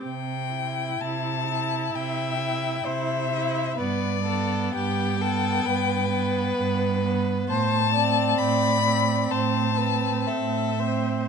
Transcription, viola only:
\new Staff \with { instrumentName = "Viola" } { \time 4/4 \key c \major \tempo 4 = 65 r8 e'4 e'4 e'4 e'8 | b8 b4 b4 b4 b8 | r8 c'4 c'4 c'4 c'8 | }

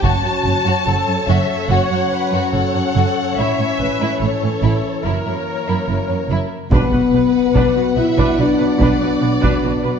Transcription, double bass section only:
\new Staff \with { instrumentName = "Double bass section" } { \clef bass \time 4/4 \key fis \phrygian \tempo 4 = 72 fis,,16 r16 fis,,16 r16 fis,,16 r16 fis,,16 r16 fis,,16 r8. fis,,16 r16 fis,,16 r16 | a,,16 r16 a,,16 r16 a,,16 r16 a,,16 r16 fis,,16 r8. fis,,16 r16 fis,,16 r16 | \key b \minor b,,16 r16 b,,16 r16 b,,16 r16 b,,16 r16 b,,16 r16 b,,16 r16 b,,16 r16 b,,16 r16 | }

